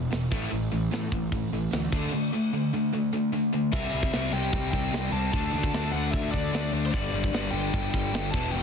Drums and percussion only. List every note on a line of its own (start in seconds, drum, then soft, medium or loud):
0.11 snare loud
0.11 open hi-hat medium
0.32 kick loud
0.52 open hi-hat medium
0.92 snare loud
0.92 open hi-hat medium
1.12 kick medium
1.32 kick loud
1.32 open hi-hat medium
1.72 snare loud
1.72 open hi-hat medium
1.92 kick loud
1.92 crash medium
3.73 kick loud
3.73 crash loud
3.73 crash medium
4.03 kick medium
4.12 snare loud
4.12 crash medium
4.53 kick loud
4.53 crash medium
4.73 kick medium
4.93 snare loud
4.93 crash medium
5.33 kick loud
5.33 crash medium
5.63 kick medium
5.73 snare loud
5.73 crash medium
6.14 kick loud
6.14 crash medium
6.34 kick medium
6.54 snare loud
6.54 crash medium
6.94 kick loud
6.94 crash medium
7.24 kick medium
7.33 snare loud
7.33 crash medium
7.74 kick loud
7.74 crash medium
7.94 kick medium
8.14 snare loud
8.14 crash medium
8.34 kick loud
8.34 crash loud
8.54 crash medium